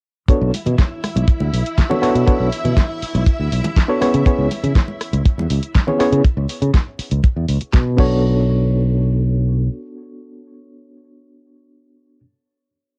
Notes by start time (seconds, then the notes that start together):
0.28 B3 D4 E4 F#4 A4 C#5 E5, muted fingered electric bass stroke, kick, closed hi-hat
0.41 B1
0.54 open hi-hat, muted conga
0.66 B2, closed hi-hat, low conga
0.79 kick, snare, closed hi-hat
1.04 cross-stick, open hi-hat, muted conga
1.16 B1, closed hi-hat, high conga
1.28 kick, closed hi-hat
1.40 D2, muted conga
1.53 B1, open hi-hat
1.66 closed hi-hat
1.78 kick, snare, closed hi-hat
1.90 B3 D4 F#4 A4 C#5, muted conga, low conga
2.02 B3 D4 F#4 A4 C#5, muted fingered electric bass stroke, cross-stick, open hi-hat
2.15 B2, closed hi-hat
2.27 B3 D4 F#4 A4 C#5, kick, closed hi-hat, muted conga
2.40 B1
2.53 open hi-hat
2.65 B2, closed hi-hat, low conga
2.77 kick, snare, closed hi-hat, muted conga
3.02 muted fingered electric bass stroke, open hi-hat
3.15 B1, closed hi-hat, muted conga, high conga
3.26 kick, closed hi-hat
3.39 D2
3.52 B1, open hi-hat
3.64 closed hi-hat, muted conga, low conga
3.76 kick, snare, closed hi-hat
3.88 B3 D4 F#4 A4 C#5
4.01 B3 C#4 E4 G#4 C#5, muted fingered electric bass stroke, cross-stick, open hi-hat, muted conga
4.14 C#3, closed hi-hat
4.26 B3 C#4 E4 G#4 C#5, kick, closed hi-hat
4.39 C#2
4.51 open hi-hat, muted conga
4.63 C#3, closed hi-hat, low conga
4.75 kick, snare, closed hi-hat
4.88 muted conga
5.01 cross-stick, open hi-hat
5.13 C#2, closed hi-hat, high conga
5.25 kick, closed hi-hat
5.38 E2, muted conga
5.50 C#2, open hi-hat
5.63 closed hi-hat
5.75 kick, snare, closed hi-hat, muted conga
5.87 B3 C#4 E4 G#4 C#5, low conga
5.99 B3 C#4 E4 G#4 C#5, muted fingered electric bass stroke, cross-stick, open hi-hat
6.12 C#3, closed hi-hat
6.24 kick, closed hi-hat
6.37 C#2
6.49 open hi-hat
6.62 C#3, closed hi-hat
6.74 kick, snare, closed hi-hat
6.99 muted fingered electric bass stroke, open hi-hat
7.11 C#2, closed hi-hat
7.24 kick, closed hi-hat
7.36 E2
7.48 C#2, open hi-hat
7.61 muted fingered electric bass stroke, closed hi-hat
7.73 B2, kick, snare, closed hi-hat
7.97 B1 B3 D4 F#4 A4 C#5, kick, crash